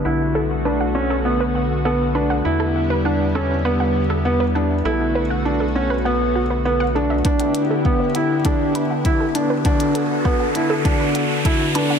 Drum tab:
HH |----------------|----------------|----------------|xxx---x-x-x-x-x-|
BD |----------------|----------------|----------------|o---o---o---o---|

HH |xxx---x-x-x-x-x-|
BD |o---o---o---o---|